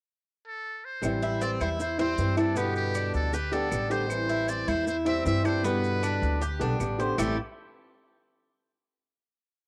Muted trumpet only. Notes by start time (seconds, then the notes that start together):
0.47 A4
0.84 C5
1.42 D5
1.61 C5
1.80 C5
1.99 C5
2.38 A4
2.56 G4
2.76 G4
3.14 A4
3.33 B4
3.53 A4
3.91 C5
4.48 D5
4.68 C5
4.88 C5
5.07 E5
5.26 E5
5.45 C5
5.64 B4
7.19 A4